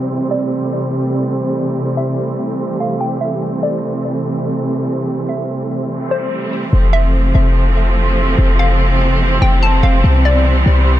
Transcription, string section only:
Already playing: C3 G3 C4
0.11 E3 A3
6.73 C3 E3 F3 A3 C4
10.04 G3 B3

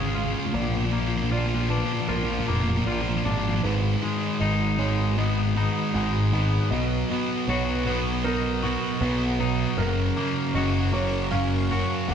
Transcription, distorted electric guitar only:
0.00 C#3 G#3
0.08 C#3 G#3
0.15 C#3 G#3
0.23 C#3 G#3
0.31 C#3 G#3
0.39 C#3 G#3
0.46 C#3 G#3
0.53 A#2 F3
0.61 A#2 F3
0.68 A#2 F3
0.76 A#2 F3
0.85 A#2 F3
0.91 A#2 F3
1.00 A#2 F3
1.07 A#2 F3
1.16 A#2 F3
1.22 A#2 F3
1.30 A#2 F3
1.38 A#2 F3
1.46 A#2 F3
1.54 A#2 F3
1.62 A#2 F3
1.69 A#2 F3
1.78 A#2 F3
1.84 A#2 F3
1.92 A#2 F3
2.00 A#2 F3
2.07 A#2 F3
2.15 A#2 F3
2.23 A#2 F3
2.31 A#2 F3
2.38 A#2 F3
2.47 A#2 F3
2.54 A#2 F3
2.62 A#2 F3
2.69 A#2 F3
2.76 A#2 F3
2.85 A#2 F3
2.92 A#2 F3
3.01 A#2 F3
3.08 A#2 F3
3.16 A#2 F3
3.24 A#2 F3
3.32 A#2 F3
3.39 A#2 F3
3.47 A#2 F3
3.55 A#2 F3
3.64 G#2 D#3 G#3
4.02 G#2 D#3 G#3
4.40 G#2 D#3 G#3
4.79 G#2 D#3 G#3
5.17 G#2 D#3 G#3
5.55 G#2 D#3 G#3
5.94 G#2 D#3 G#3
6.32 G#2 D#3 G#3
6.71 B2 F#3 B3
7.10 B2 F#3 B3
7.48 B2 F#3 B3
7.86 B2 F#3 B3
8.24 B2 F#3 B3
8.63 B2 F#3 B3
9.01 B2 F#3 B3
9.39 B2 F#3 B3
9.78 F#2 C#3 F#3
10.17 F#2 C#3 F#3
10.55 F#2 C#3 F#3
10.92 F#2 C#3 F#3
11.32 F#2 C#3 F#3
11.70 F#2 C#3 F#3
12.08 F#2 C#3 F#3

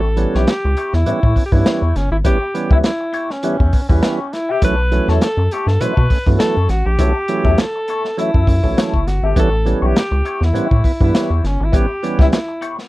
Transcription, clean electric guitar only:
Already playing: B3
0.06 muted clean electric guitar stroke
0.19 muted clean electric guitar stroke
0.35 B3 E4 G4 C#5
0.49 muted clean electric guitar stroke
0.65 muted clean electric guitar stroke
0.77 B3 E4 G4 C#5
0.94 muted clean electric guitar stroke
1.07 B3 E4 G4 C#5
1.37 muted clean electric guitar stroke
1.53 muted clean electric guitar stroke
1.66 B3 E4 G4 C#5
1.95 muted clean electric guitar stroke
2.12 muted clean electric guitar stroke
2.24 B3 E4 G4 C#5
2.42 muted clean electric guitar stroke
2.55 muted clean electric guitar stroke
2.71 B3 E4 G4 E5
3.00 muted clean electric guitar stroke
3.13 B3 E4 G4 C#5
3.31 muted clean electric guitar stroke
3.43 B3 E4 G4 E5
3.74 muted clean electric guitar stroke
3.91 muted clean electric guitar stroke
4.03 B3 E4 G4 C#5
4.33 muted clean electric guitar stroke
4.49 B3 E4 G4 E5
4.62 B3 E4 A4 C#5
4.79 muted clean electric guitar stroke
4.93 muted clean electric guitar stroke
5.09 B3 E4 A4 C#5
5.22 muted clean electric guitar stroke
5.39 muted clean electric guitar stroke
5.53 B3 E4 A4 C#5
5.69 muted clean electric guitar stroke
5.81 A#3 D#4 G#4 C5
5.92 B3 E4 A4 C#5
6.26 muted clean electric guitar stroke
6.39 B3 E4 A4 C#5
6.69 muted clean electric guitar stroke
6.86 muted clean electric guitar stroke
6.99 B3 E4 A4 C#5
7.15 muted clean electric guitar stroke
7.29 muted clean electric guitar stroke
7.45 B3 E4 A4 E5
7.76 muted clean electric guitar stroke
7.88 B3 E4 A4 C#5
8.07 muted clean electric guitar stroke
8.18 B3 E4 A4 E5
8.48 muted clean electric guitar stroke
8.64 muted clean electric guitar stroke
8.77 B3 E4 A4 C#5
9.07 muted clean electric guitar stroke
9.23 B3 E4 A4 E5
9.36 B3 E4 G4 C#5
9.53 muted clean electric guitar stroke
9.66 muted clean electric guitar stroke
9.82 B3 E4 G4 C#5
9.96 muted clean electric guitar stroke
10.12 muted clean electric guitar stroke
10.25 B3 E4 G4 C#5
10.41 muted clean electric guitar stroke
10.53 A#3 D#4 F#4 C5
10.65 B3 E4 G4 C#5
11.01 muted clean electric guitar stroke
11.14 B3 E4 G4 C#5
11.44 muted clean electric guitar stroke
11.61 muted clean electric guitar stroke
11.72 B3 E4 G4 C#5
11.89 muted clean electric guitar stroke
12.03 muted clean electric guitar stroke
12.20 B3 E4 G4 E5
12.48 muted clean electric guitar stroke
12.61 B3 E4 G4 C#5
12.78 muted clean electric guitar stroke

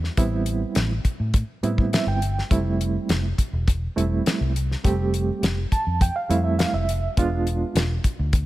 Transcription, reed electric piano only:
0.17 G3 B3 C4 E4
1.63 G3 B3 C4 E4
1.93 E5
2.08 G5
2.51 G3 A3 C4 E4
3.96 G3 A3 C4 E4
4.83 G3 A3 C4 G4
5.72 A5
6.02 G5
6.16 F5
6.29 G3 A3 C4 E4
6.44 E5
6.59 F5
6.74 E5
7.17 G#3 B3 D4 F4

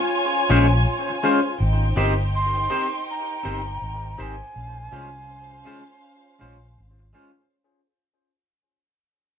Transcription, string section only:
Already playing: F4 C#5 G#5
1.59 D#4 C5 G5
4.56 C#4 C5 F5

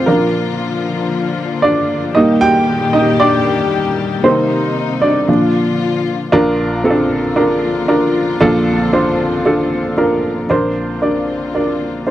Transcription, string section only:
Already playing: F4
0.07 D3 F3 A#3
2.16 A#2 D#3 G3 G4
4.24 C3 D#4
5.28 D3 F3 F4
6.33 D3 F3 A#3 F4
8.42 C4
10.50 D3 A#3 C4 F4

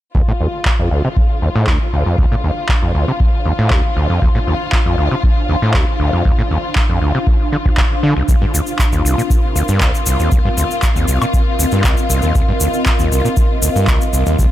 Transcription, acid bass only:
0.15 D2
0.28 A2
0.40 D#2
0.79 F2
0.91 D2
1.05 C3
1.42 D#2
1.56 A2
1.68 D2
1.93 D2
2.06 F2
2.18 D2
2.32 A2
2.44 D#2
2.83 F2
2.95 D2
3.08 C3
3.46 D#2
3.59 A2
3.71 D2
3.97 D2
4.10 F2
4.22 D2
4.35 A2
4.47 D#2
4.86 F2
4.98 D2
5.11 C3
5.49 D#2
5.62 A2
5.74 D2
6.00 D2
6.13 F2
6.25 D2
6.39 A2
6.51 D#2
6.89 F2
7.02 D2
7.15 C3
7.52 D3
7.66 D2
7.78 D1
8.03 D3
8.17 C2
8.29 C2
8.42 G2
8.54 D2
8.93 D#2
9.05 C2
9.18 A#2
9.56 D2
9.69 G2
9.81 C2
10.07 C2
10.20 D#2
10.32 C2
10.45 G2
10.57 D2
10.96 D#2
11.08 C2
11.22 A#2
11.59 D2
11.72 G2
11.85 C2
12.10 C2
12.23 D#2
12.35 C2
12.49 G2
12.61 D2
12.99 D#2
13.12 C2
13.25 A#2
13.62 D2
13.76 G2
13.88 C2
14.13 C2
14.27 D#2
14.39 C2

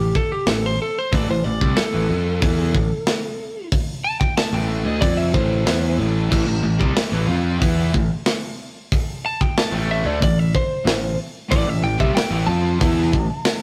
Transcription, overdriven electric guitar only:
0.48 A2 E3
1.12 A2 E3
1.29 A2 E3
1.45 A2 E3
1.61 C3 G3
1.77 muted overdriven electric guitar stroke
1.92 A2 E3
2.08 F3 C4 F4
2.41 E3 B3 E4
2.73 A2 E3
4.52 A2 E3 A3
4.85 D3 A3
5.01 F3 C4 F4
5.33 A2 E3 A3
5.65 E3 B3 E4
5.98 A2 E3 A3
6.30 A2 E3
6.47 A2 E3
6.63 A2 E3
6.78 C3 G3
6.95 muted overdriven electric guitar stroke
7.12 A2 E3
7.28 F3 C4 F4
7.61 E3 B3 E4
7.93 A2 E3
9.72 A2 E3 A3
10.04 D3 A3
10.21 A2 E3
10.86 A2 E3
11.50 A2 E3
11.67 A2 E3
11.83 A2 E3
11.99 C3 G3
12.15 muted overdriven electric guitar stroke
12.31 A2 E3
12.47 F3 C4 F4
12.79 E3 B3 E4
13.13 A2 E3

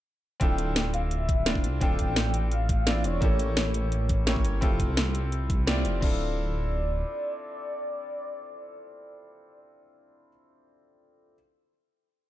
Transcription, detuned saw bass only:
0.41 D1
1.38 D1
1.64 C2
1.81 D1
2.08 A1
3.04 E1
3.22 A1
4.19 A1
4.45 G1
4.62 F1
4.89 C2
5.85 F1
6.02 D1

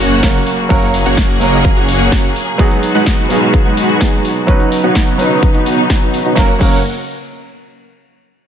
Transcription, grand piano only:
Already playing: F#3 A#3 C#4 A#4
0.22 F#3 A#3 C#4 A#4
0.69 F#3 A#3 C#4 A#4
1.40 F#3 A#3 C#4 A#4
2.58 F#3 B3 D#4 G#4
3.29 F#3 B3 D#4 G#4
4.00 F#3 B3 D#4 G#4
4.47 F#3 C#4 D#4 B4
5.18 F#3 C#4 D#4 B4
6.35 F#3 A#3 C#4 A#4
6.59 F#3 A#3 C#4 A#4

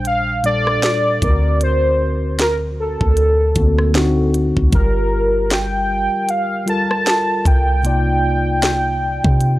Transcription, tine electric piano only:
Already playing: A#2 G3 D4 C5
0.43 A#2 G3 D4 A4
1.21 D3 C4 D#4 A#4
1.30 F#4
3.54 D3 A#3 C4 F#4
3.93 D3 C4 D#4 F#4
4.71 G3 F4 G4 A#4
6.66 G3 F4 A4 A#4
7.83 C3 A#3 D#4 F4 D5

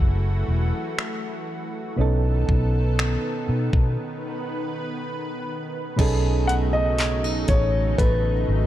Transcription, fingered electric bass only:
0.00 F#1
0.48 E1
1.98 B1
2.49 B1
3.49 B2
3.73 B2
5.99 B1
7.49 A1
7.98 A1
8.48 G#1

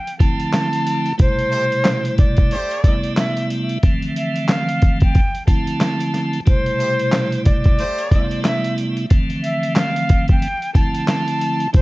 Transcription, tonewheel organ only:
0.19 D3 F3 A3 C4 E4
1.18 B2 C3 G3 A3 E4
2.87 C3 G3 A3 B3 E4
3.83 D3 E3 F3 A3 C4
5.47 D3 F3 A3 C4 E4
6.46 B2 C3 G3 A3 E4
8.15 C3 G3 A3 B3 E4
9.10 D3 E3 F3 A3 C4
10.74 D3 F3 A3 C4 E4
11.73 B2 C3 G3 A3 E4

